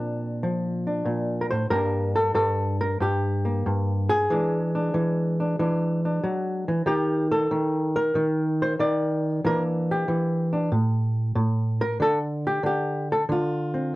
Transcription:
0.00 1.04 A#2 medium
0.00 0.43 F3 medium
0.00 1.68 C4 soft
0.00 0.86 D4 soft
0.00 1.40 A#4 medium
0.43 1.69 F3 medium
0.87 1.68 D4 soft
1.06 1.50 A#2 medium
1.41 1.50 A#4 medium
1.51 1.70 A2 medium
1.51 1.70 C5 medium
1.70 2.34 G2 medium
1.70 4.26 G3 soft
1.70 3.45 A#3 soft
1.70 4.32 D4 soft
1.70 2.14 A#4 loud
2.15 2.34 A4 medium
2.35 2.99 G2 medium
2.35 2.79 A4 medium
2.81 3.00 A#4 medium
3.00 3.64 G2 medium
3.00 4.09 G4 medium
3.45 4.30 A#3 soft
3.66 4.26 G2 medium
4.10 6.66 G#4 loud
4.30 4.93 E3 medium
4.30 6.86 G#3 soft
4.30 4.75 D4 soft
4.75 5.39 D4 soft
4.94 5.57 E3 medium
5.40 5.59 D4 soft
5.59 6.22 E3 medium
5.59 6.05 D4 medium
6.05 6.87 D4 soft
6.24 6.66 F#3 medium
6.68 6.86 E3 medium
6.86 7.50 D#3 medium
6.86 9.41 D#4 medium
6.86 7.30 G4 medium
7.32 7.95 A4 medium
7.51 8.14 D#3 medium
7.96 9.23 A#4 loud
8.15 8.78 D#3 medium
8.62 8.73 C5 medium
8.79 9.43 D#3 medium
8.79 9.43 D5 loud
9.44 10.07 E3 medium
9.44 10.70 A#3 medium
9.44 10.52 D4 medium
9.44 9.62 A#4 loud
9.91 11.81 G4 medium
10.08 10.69 E3 medium
10.53 10.69 D4 soft
10.72 11.34 A2 medium
11.36 11.97 A2 medium
11.81 12.00 A#4 loud
12.00 12.62 D3 medium
12.00 12.18 A4 loud
12.47 12.65 G4 medium
12.63 13.28 D3 medium
12.63 13.09 G4 medium
13.12 13.23 A4 medium
13.29 13.95 D3 medium
13.29 13.95 F4 medium
13.74 13.95 C4 soft

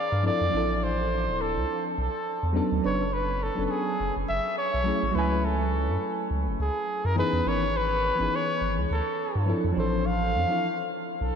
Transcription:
0.00 0.24 D5 medium
0.12 0.30 G2 medium
0.23 0.42 F3 medium
0.23 0.43 C4 medium
0.23 0.43 D4 medium
0.23 0.44 E4 medium
0.23 0.44 A4 medium
0.23 0.85 D5 loud
0.41 0.50 F2 medium
0.49 1.94 F3 medium
0.49 1.95 C4 medium
0.49 1.96 D4 medium
0.54 1.29 A1 loud
0.54 1.97 E4 medium
0.54 1.98 A4 loud
0.83 1.43 C5 loud
1.28 1.58 D1 medium
1.41 1.86 A4 medium
1.56 1.65 C2 loud
1.98 2.09 B1 loud
1.98 2.55 A4 medium
2.43 2.61 E2 medium
2.53 2.80 F#3 medium
2.53 2.81 B3 medium
2.53 2.81 C#4 medium
2.53 2.82 D4 medium
2.53 2.82 A4 loud
2.72 2.80 D2 medium
2.82 3.50 F#1 medium
2.82 3.01 F#3 medium
2.82 3.02 B3 medium
2.82 3.02 C#4 medium
2.82 3.03 D4 medium
2.82 3.03 B4 loud
2.86 3.15 C#5 medium
3.13 3.45 B4 medium
3.43 3.65 A4 medium
3.55 3.67 F#1 medium
3.55 3.97 F#3 medium
3.55 3.97 B3 medium
3.55 3.98 C#4 medium
3.55 3.98 D4 medium
3.55 3.99 A4 medium
3.65 3.72 A4 medium
3.71 4.16 G#4 loud
4.00 4.11 F#1 medium
4.17 4.25 F#1 loud
4.29 4.40 F#1 loud
4.29 4.56 E5 loud
4.58 5.17 C#5 loud
4.74 4.92 B1 medium
4.84 5.03 F#3 medium
4.84 5.04 A3 medium
4.84 5.04 C#4 medium
4.84 5.05 E4 medium
4.88 5.05 G#4 medium
5.03 5.11 A1 medium
5.11 6.56 F#3 medium
5.11 6.57 A3 medium
5.11 6.58 C#4 medium
5.15 5.90 C#2 loud
5.15 6.59 E4 medium
5.15 5.47 B4 medium
5.15 6.60 G#5 loud
5.45 6.31 A4 medium
5.89 5.97 F#2 medium
6.31 6.48 C#2 medium
6.47 6.55 F#1 loud
6.60 6.70 C#2 loud
6.60 7.07 G#4 medium
7.05 7.22 F#2 medium
7.05 7.18 A#4 loud
7.15 7.42 E3 medium
7.15 7.42 B3 medium
7.15 7.43 C#4 medium
7.15 7.43 D#4 medium
7.15 7.44 G#4 loud
7.15 7.50 B4 loud
7.33 7.42 E2 medium
7.45 8.11 G#1 loud
7.45 7.64 E3 medium
7.45 7.64 B3 medium
7.45 7.65 C#4 medium
7.45 7.65 D#4 medium
7.45 7.66 A#4 loud
7.45 7.78 C#5 loud
7.77 8.37 B4 loud
8.15 8.87 E3 medium
8.15 8.88 B3 medium
8.15 8.89 C#4 medium
8.20 8.28 G#1 medium
8.20 8.89 D#4 medium
8.20 8.90 G#4 medium
8.36 8.79 C#5 loud
8.61 8.79 G#1 medium
8.77 8.86 C#2 loud
8.91 9.01 D2 loud
8.91 9.45 A4 medium
9.35 9.53 G2 medium
9.46 9.65 F3 medium
9.46 9.66 C4 medium
9.46 9.66 D4 medium
9.46 9.67 E4 medium
9.46 9.67 A4 medium
9.64 9.73 F2 medium
9.72 10.45 F3 loud
9.72 10.46 C4 medium
9.72 10.47 D4 medium
9.77 10.36 A1 loud
9.77 10.48 E3 medium
9.77 10.49 A4 loud
9.77 10.08 C5 medium
10.06 10.93 F5 loud
10.35 10.45 F2 medium
10.48 10.65 F3 medium
10.48 10.65 C4 medium
10.48 10.66 D4 medium
10.48 10.66 E4 medium
10.48 10.67 A4 medium
11.21 11.32 B1 loud
11.21 11.36 A4 medium

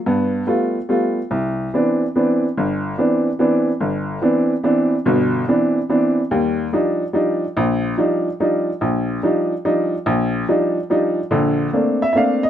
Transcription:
0.06 0.42 G2 medium
0.06 0.42 B3 medium
0.47 0.76 G3 soft
0.47 0.76 A3 soft
0.47 0.77 B3 soft
0.47 0.77 F4 medium
0.89 1.18 G3 soft
0.89 1.18 A3 soft
0.89 1.19 B3 soft
0.89 1.19 F4 medium
1.31 1.67 C2 medium
1.74 2.02 E3 soft
1.74 2.02 B3 soft
1.74 2.03 C4 soft
1.74 2.03 D4 medium
2.16 2.44 E3 soft
2.16 2.44 B3 soft
2.16 2.44 C4 soft
2.16 2.45 D4 soft
2.57 2.93 G1 medium
2.98 3.27 E3 soft
2.98 3.27 B3 soft
2.98 3.27 C4 soft
2.98 3.28 D4 medium
3.39 3.68 E3 medium
3.39 3.69 B3 soft
3.39 3.69 C4 soft
3.39 3.69 D4 medium
3.80 4.17 G1 medium
4.22 4.51 E3 soft
4.22 4.52 B3 soft
4.22 4.51 C4 soft
4.22 4.52 D4 medium
4.63 4.93 E3 medium
4.63 4.93 B3 soft
4.63 4.93 C4 soft
4.63 4.93 D4 medium
5.06 5.42 G1 medium
5.06 5.42 B2 medium
5.48 5.77 E3 medium
5.48 5.77 B3 soft
5.48 5.77 C4 soft
5.48 5.78 D4 medium
5.89 6.18 E3 soft
5.89 6.19 B3 soft
5.89 6.19 C4 soft
5.89 6.19 D4 medium
6.31 6.67 D#2 medium
6.31 6.67 G3 medium
6.73 7.02 F3 soft
6.73 7.02 G3 soft
6.73 7.02 D4 medium
6.73 7.02 D#4 medium
7.13 7.43 F3 medium
7.13 7.43 G3 soft
7.13 7.43 D4 soft
7.13 7.44 D#4 medium
7.57 7.92 A#1 medium
7.97 8.27 F3 medium
7.97 8.27 G3 soft
7.97 8.27 D4 soft
7.97 8.27 D#4 medium
8.40 8.69 F3 medium
8.40 8.69 G3 medium
8.40 8.69 D4 soft
8.40 8.69 D#4 medium
8.81 9.17 A#1 medium
9.23 9.52 F3 medium
9.23 9.52 G3 soft
9.23 9.52 D4 soft
9.23 9.52 D#4 medium
9.65 9.94 F3 soft
9.65 9.94 G3 medium
9.65 9.94 D4 medium
9.65 9.94 D#4 medium
10.06 10.42 A#1 medium
10.48 10.77 F3 medium
10.48 10.77 G3 soft
10.48 10.77 D4 soft
10.48 10.77 D#4 medium
10.90 11.19 F3 medium
10.90 11.19 G3 medium
10.90 11.19 D4 soft
10.90 11.19 D#4 medium
11.31 11.67 A#1 medium
11.31 11.67 D3 medium
11.73 12.02 A3 soft
11.73 12.02 A#3 soft
11.73 12.02 C4 soft
11.73 12.02 D4 soft
12.02 12.11 E5 medium
12.13 12.44 A3 soft
12.13 12.44 A#3 soft
12.13 12.44 C4 soft
12.13 12.44 D4 medium
12.13 12.16 E5 medium
12.17 12.42 F5 medium
12.43 12.50 D#5 medium

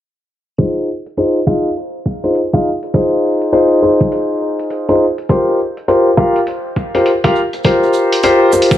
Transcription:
0.58 0.87 D#4 medium
0.58 0.87 F4 medium
0.58 0.87 G#4 medium
0.58 0.87 C5 medium
0.58 kick loud
0.58 closed hi-hat medium
1.06 closed hi-hat soft
1.17 1.38 D#4 medium
1.17 1.38 F4 medium
1.17 1.38 G#4 medium
1.17 1.38 C5 medium
1.17 closed hi-hat medium
1.47 1.67 D#4 medium
1.47 1.67 F4 medium
1.47 1.67 G#4 medium
1.47 1.67 F5 medium
1.47 kick medium
2.06 kick medium
2.24 2.38 D#4 medium
2.24 2.39 F4 medium
2.24 2.38 G#4 medium
2.24 2.38 C5 medium
2.24 closed hi-hat soft
2.35 closed hi-hat medium
2.53 2.68 D#4 medium
2.53 2.68 F4 medium
2.53 2.68 G#4 medium
2.53 2.68 F5 medium
2.53 kick loud
2.53 closed hi-hat medium
2.83 closed hi-hat soft
2.94 3.50 D#4 medium
2.94 3.50 F4 medium
2.94 3.50 G#4 medium
2.94 3.50 C5 medium
2.94 kick loud
2.94 closed hi-hat medium
3.42 closed hi-hat soft
3.53 3.79 D#4 medium
3.53 3.79 F4 medium
3.53 3.79 G#4 medium
3.53 3.79 C5 medium
3.53 closed hi-hat medium
3.82 4.85 D#4 medium
3.82 4.85 F4 medium
3.82 4.84 G#4 medium
3.82 4.85 C5 medium
4.01 kick loud
4.01 closed hi-hat medium
4.12 closed hi-hat medium
4.59 closed hi-hat soft
4.70 closed hi-hat medium
4.89 5.03 D#4 medium
4.89 5.03 F4 medium
4.89 5.03 G#4 medium
4.89 5.03 C5 medium
4.89 closed hi-hat medium
5.18 closed hi-hat medium
5.29 5.58 F4 medium
5.29 5.58 G4 medium
5.29 5.58 A#4 medium
5.29 5.58 C5 medium
5.29 kick loud
5.29 closed hi-hat medium
5.29 shaker medium
5.48 shaker soft
5.59 shaker medium
5.77 closed hi-hat soft
5.77 shaker soft
5.88 6.09 F4 medium
5.88 6.09 G4 medium
5.88 6.09 A#4 medium
5.88 6.09 C5 medium
5.88 closed hi-hat medium
5.88 shaker soft
6.17 6.38 F4 medium
6.17 6.38 G4 medium
6.17 6.38 A#4 medium
6.17 6.38 F5 medium
6.17 kick loud
6.17 shaker medium
6.35 closed hi-hat soft
6.35 shaker soft
6.47 closed hi-hat medium
6.47 shaker medium
6.76 kick medium
6.76 shaker medium
6.95 7.09 F4 medium
6.95 7.09 G4 medium
6.95 7.09 A#4 medium
6.95 7.09 C5 medium
6.95 closed hi-hat soft
6.95 shaker soft
7.06 closed hi-hat medium
7.06 shaker medium
7.24 7.39 F4 medium
7.24 7.39 G4 medium
7.24 7.39 A#4 medium
7.24 7.39 F5 medium
7.24 kick loud
7.24 closed hi-hat medium
7.35 shaker medium
7.53 closed hi-hat medium
7.53 shaker soft
7.63 8.21 F4 medium
7.63 8.21 G4 medium
7.63 8.21 A#4 medium
7.63 8.21 C5 medium
7.63 kick loud
7.63 closed hi-hat medium
7.63 shaker soft
7.83 shaker soft
7.93 shaker medium
8.12 closed hi-hat soft
8.12 shaker soft
8.23 8.50 F4 medium
8.23 8.50 G4 medium
8.23 8.50 A#4 medium
8.23 8.50 C5 loud
8.23 closed hi-hat medium
8.23 shaker medium
8.52 8.78 F4 medium
8.52 8.78 G4 medium
8.52 8.78 A#4 medium
8.52 8.78 C5 medium
8.52 shaker medium
8.62 closed hi-hat soft
8.71 kick loud
8.71 shaker soft

